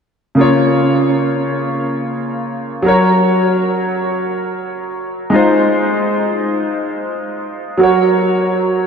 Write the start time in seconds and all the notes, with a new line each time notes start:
0.35 C#3 A#3 F4
0.41 C#5
2.82 F#3 F#4 A#4
2.88 C#5
5.30 G#3 D#4 F4
5.36 C5
7.77 F#3 F#4 A#4
7.83 C#5